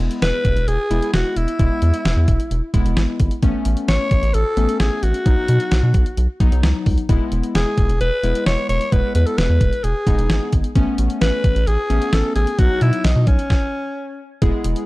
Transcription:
Already playing: G#3 B3 E4
0.11 closed hi-hat
0.22 E1 B4, snare, closed hi-hat
0.45 E1, kick, closed hi-hat
0.56 E1, closed hi-hat
0.68 E1 G#4, closed hi-hat
0.91 E1 G#3 B3 E4, closed hi-hat
1.03 closed hi-hat
1.14 E1 F#4, snare, closed hi-hat
1.37 E1 E4, closed hi-hat
1.48 closed hi-hat
1.59 E1 G#3 B3 E4, kick, closed hi-hat
1.82 E2, closed hi-hat
1.94 closed hi-hat
2.05 E1, snare, closed hi-hat
2.17 E2
2.28 E1, kick, closed hi-hat
2.40 closed hi-hat
2.51 E1, closed hi-hat
2.74 E1 G#3 B3 E4, kick, closed hi-hat
2.85 E1, closed hi-hat
2.97 G#1, snare, closed hi-hat
3.20 G#1, kick, closed hi-hat
3.31 closed hi-hat
3.43 A1 A3 B3 C#4, kick, closed hi-hat
3.65 A1, closed hi-hat
3.77 closed hi-hat
3.88 A1 C#5, snare, closed hi-hat
4.11 A1, kick, closed hi-hat
4.23 A1, closed hi-hat
4.34 A1 A4, closed hi-hat
4.57 A1 A3 B3 C#4, closed hi-hat
4.69 closed hi-hat
4.80 A1 G#4, snare, closed hi-hat
5.03 A1 F#4, closed hi-hat
5.14 closed hi-hat
5.26 B1 F#3 B3 D#4, kick, closed hi-hat
5.48 B2, closed hi-hat
5.60 closed hi-hat
5.71 B1, snare, closed hi-hat
5.83 B2
5.94 B1, kick, closed hi-hat
6.06 closed hi-hat
6.17 B1, closed hi-hat
6.40 B1 F#3 B3 D#4, kick, closed hi-hat
6.52 B1, closed hi-hat
6.63 C#2, snare, closed hi-hat
6.86 C#2, kick, open hi-hat
6.98 closed hi-hat
7.09 E1 G#3 B3 E4, kick, closed hi-hat
7.32 E1, closed hi-hat
7.43 closed hi-hat
7.55 E1 G#4, snare, closed hi-hat
7.78 E1, kick, closed hi-hat
7.89 E1, closed hi-hat
8.01 E1 B4, closed hi-hat
8.23 E1 G#3 B3 E4, closed hi-hat
8.35 closed hi-hat
8.46 E1 C#5, snare, closed hi-hat
8.69 E1 C#5, closed hi-hat
8.81 closed hi-hat
8.92 E1 G#3 B3 E4 B4, kick, closed hi-hat
9.15 E2 B4, closed hi-hat
9.26 A4, closed hi-hat
9.38 E1 B4, snare, closed hi-hat
9.50 E2
9.61 E1, kick, closed hi-hat
9.73 closed hi-hat
9.84 E1 G#4, closed hi-hat
10.07 E1 G#3 B3 D#4, kick, closed hi-hat
10.18 E1, closed hi-hat
10.30 G#1, snare, closed hi-hat
10.53 G#1, kick, closed hi-hat
10.64 closed hi-hat
10.75 A1 A3 B3 C#4, kick, closed hi-hat
10.98 A1, closed hi-hat
11.10 closed hi-hat
11.21 A1 B4, snare, closed hi-hat
11.44 A1, kick, closed hi-hat
11.56 A1, closed hi-hat
11.67 A1 G#4, closed hi-hat
11.90 A1 A3 B3 C#4, closed hi-hat
12.02 closed hi-hat
12.13 A1 A4, snare, closed hi-hat
12.36 A1 G#4, closed hi-hat
12.47 closed hi-hat
12.59 B1 F#3 B3 D#4 F#4, kick, closed hi-hat
12.81 B2 E4, closed hi-hat
12.93 closed hi-hat
13.04 B1 D#4, snare, closed hi-hat
13.16 B2
13.27 B1 C#4, kick, closed hi-hat
13.39 closed hi-hat
13.50 kick, snare
14.42 E1 G#3 B3 E4 G#4, kick, closed hi-hat
14.64 E1, closed hi-hat
14.76 closed hi-hat

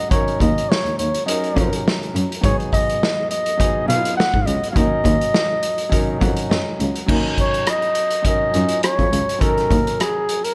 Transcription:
Already playing: F#3 C#4 D#4 A#4
0.09 F#3 C#4 D#4 A#4 C#5, kick, closed hi-hat
0.28 closed hi-hat
0.40 D#2 D#5, kick, closed hi-hat
0.58 closed hi-hat
0.70 C#5, snare
0.85 D#2, closed hi-hat
0.99 D#2 C#5, closed hi-hat
1.15 closed hi-hat
1.26 F#3 C#4 D#4 A#4 D#5, closed hi-hat
1.44 closed hi-hat
1.54 F2 F#3 C#4 D#4 A#4, kick, closed hi-hat
1.73 closed hi-hat
1.88 snare
2.03 closed hi-hat
2.15 F#2, closed hi-hat
2.32 closed hi-hat
2.41 G#2 F#3 B3 D#4 G#4 C#5, kick, closed hi-hat
2.60 closed hi-hat
2.72 D#5, kick, closed hi-hat
2.90 closed hi-hat
3.03 snare
3.30 D#5, closed hi-hat
3.46 closed hi-hat
3.57 F#3 B3 D#4 G#4, kick, closed hi-hat
3.86 B2 F#3 B3 D#4 E4 F5, closed hi-hat
3.96 F4
4.05 closed hi-hat
4.17 F#5, snare
4.34 G#2, kick
4.41 F5
4.46 C#2 D#5, closed hi-hat
4.64 closed hi-hat
4.71 F#3 C#4 F5
4.75 D#2 D#4 A#4 D#5, kick, closed hi-hat
5.05 D#2, kick, closed hi-hat
5.21 closed hi-hat
5.34 snare
5.63 closed hi-hat
5.78 closed hi-hat
5.89 F#3 C#4 D#4 A#4, kick, closed hi-hat
6.19 F2 F#3 C#4 D#4 A#4 F#5, kick, closed hi-hat
6.37 closed hi-hat
6.49 F#2 D#5, snare
6.80 C#2, closed hi-hat
6.96 closed hi-hat
7.06 D#2 F#3 C#4 D#4, kick, crash
7.11 A#4
7.26 cross-stick
7.38 C#5, kick, closed hi-hat
7.54 closed hi-hat
7.67 D#5, cross-stick, closed hi-hat
7.82 closed hi-hat
7.95 closed hi-hat
8.11 closed hi-hat
8.22 F#3 C#4 D#4, kick, closed hi-hat
8.26 A#4 D#5
8.51 F#2 F#3 C#4 D#4 F4, closed hi-hat
8.69 closed hi-hat
8.83 C#5, cross-stick, closed hi-hat
8.99 F2, kick, closed hi-hat
9.12 C#2, closed hi-hat
9.29 closed hi-hat
9.39 F#3 C#4 D#4 A4 A#4, kick, closed hi-hat
9.49 A#4
9.58 cross-stick, closed hi-hat
9.71 D#2, kick, closed hi-hat
9.87 closed hi-hat
10.00 G#4, cross-stick, closed hi-hat
10.29 closed hi-hat
10.44 A#4, closed hi-hat

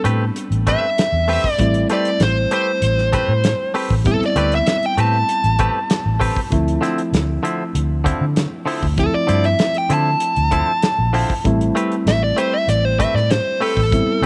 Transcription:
Already playing: G3 B3 C4 D4
0.04 A2 A3 C4 G4 B4, closed hi-hat
0.36 closed hi-hat
0.51 A1, closed hi-hat
0.67 A3 C4 G4 B4 E5, kick, closed hi-hat
0.98 snare, closed hi-hat
1.12 E2
1.28 A3 C4 G4 B4, open hi-hat
1.44 kick
1.51 D5
1.58 A1 G3 A3 C4 E4, kick, closed hi-hat
1.74 closed hi-hat
1.89 A3 C4 G4 B4 D5, snare, closed hi-hat
2.05 closed hi-hat
2.20 A1 C5, snare, closed hi-hat
2.51 A3 C4 G4 B4 C5, closed hi-hat
2.82 A1, closed hi-hat
2.98 snare
3.13 A3 C4 G4 B4, kick, closed hi-hat
3.28 A2
3.44 snare, closed hi-hat
3.74 A3 C4 G4 B4, open hi-hat
3.90 A1, kick
4.04 G3 B3 C4 E4 A4, kick, closed hi-hat
4.21 muted fingered electric bass stroke, snare
4.26 D5
4.35 D2 A3 C4 G4 B4, closed hi-hat
4.52 E5, closed hi-hat
4.67 snare, closed hi-hat
4.83 G5, closed hi-hat
4.97 A2 A3 C4 G4 B4 A5, closed hi-hat
5.29 closed hi-hat
5.44 A1, closed hi-hat
5.59 A3 C4 G4 B4, kick, closed hi-hat
5.90 snare, closed hi-hat
6.06 A1
6.20 A3 C4 G4 B4, kick, open hi-hat
6.36 kick
6.50 D2 F3 A3 C4 E4, kick, closed hi-hat
6.68 closed hi-hat
6.81 D3 F3 C4 E4, snare, closed hi-hat
6.98 closed hi-hat
7.13 D2, snare, closed hi-hat
7.43 D3 F3 C4 E4, closed hi-hat
7.75 D2, closed hi-hat
8.04 D3 F3 C4 E4, kick, closed hi-hat
8.21 D3
8.36 snare, closed hi-hat
8.66 D3 F3 C4 E4, open hi-hat
8.82 D2, kick
8.97 F3 A3 C4 E4 A4, kick, closed hi-hat
9.14 D5, muted fingered electric bass stroke
9.27 G2 D3 F3 C4 E4, closed hi-hat
9.44 E5, closed hi-hat
9.59 snare, closed hi-hat
9.74 G5, closed hi-hat
9.90 D3 F3 C4 E4 A5, closed hi-hat
10.20 closed hi-hat
10.36 D2, closed hi-hat
10.51 D3 F3 C4 E4, kick, closed hi-hat
10.82 snare, closed hi-hat
10.99 A#1
11.13 D3 F3 C4 E4, open hi-hat
11.30 kick
11.44 A1 G3 A3 C4 E4, kick, closed hi-hat
11.61 closed hi-hat
11.75 A3 C4 G4 B4, closed hi-hat
11.92 closed hi-hat
12.06 A1 E5, snare, closed hi-hat
12.24 D5
12.37 A3 C4 G4 B4 C5, closed hi-hat
12.54 E5
12.68 A1 D5, closed hi-hat
12.85 C5
12.99 A3 C4 G4 B4 E5, kick, closed hi-hat
13.14 A2 D5, snare
13.31 C5, snare, closed hi-hat
13.61 A3 C4 G4 A4 B4, open hi-hat
13.77 A1, kick
13.91 G3 B3 C4 E4, kick, closed hi-hat
14.22 D2 A3

